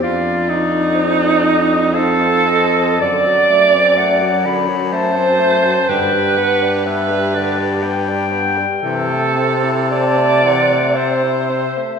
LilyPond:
<<
  \new Staff \with { instrumentName = "Clarinet" } { \time 3/4 \key f \mixolydian \tempo 4 = 61 d''4 c''8 ees''8 f''8 ees''8 | \key g \major d''4 fis''8 b''8 a''4 | g''8 fis''8 e''8 d''8 g''4~ | g''8 r8 a''8 fis''8 e''4 | }
  \new Staff \with { instrumentName = "Alto saxophone" } { \time 3/4 \key f \mixolydian f'8 ees'4. a'4 | \key g \major d''4. r8 c''4 | b'4 b'4 r4 | a'4 d''4 c''4 | }
  \new Staff \with { instrumentName = "Tenor saxophone" } { \time 3/4 \key f \mixolydian d'2 c'4 | \key g \major d16 fis16 a16 c'16 a16 fis16 d16 fis16 a16 c'16 a16 fis16 | d16 g16 b16 d'16 b16 g16 d16 g16 b16 d'16 b16 g16 | e16 a16 c'16 e'16 c'16 a16 e16 a16 c'16 e'16 c'16 a16 | }
  \new Staff \with { instrumentName = "Baritone saxophone" } { \clef bass \time 3/4 \key f \mixolydian f,2. | \key g \major fis,2. | g,2. | c2~ c8 r8 | }
>>